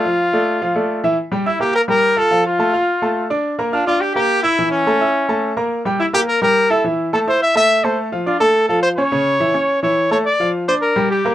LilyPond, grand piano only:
\new Staff \with { instrumentName = "Grand piano" } { \time 4/4 \key d \minor \tempo 4 = 212 <f f' f''>4 <a a' d''>4 <f f' f''>8 <a a' d''>4 <e e' e''>8 | r8 <g g' g''>8 <e' e'' e'''>8 <bes bes' bes''>4 <g g' g''>4 <f' f'' f'''>8 | <f f' f''>4 <a a' a''>8 <f' f'' f'''>4 <a a' a''>4 <d' d'' d'''>8~ | <d' d'' d'''>8 <bes bes' bes''>8 <f' f'' f'''>8 <d' d'' d'''>4 <bes bes' bes''>4 <e' e'' e'''>8 |
<e e' e''>4 <a a' a''>8 <e' e'' e'''>4 <a a' a''>4 <bes bes' bes''>8~ | <bes bes' bes''>8 <g g' g''>8 <e' e'' e'''>8 <bes bes' bes''>4 <g g' g''>4 <e' e'' e'''>8 | <e e' e''>4 <a a' a''>8 <e' e'' e'''>4 <a a' a''>4 <a a' a''>8~ | <a a' a''>8 <f f' f''>8 <d' d'' d'''>8 <a a' a''>4 <f f' f''>4 <cis' cis'' cis'''>8 |
<cis cis' cis''>4 <e e' e''>8 <cis' cis'' cis'''>4 <e e' e''>4 <a a' a''>8 | r8 <f f' f''>4 <d' d'' d'''>4 <g g' g''>4 <bes bes' bes''>8 | }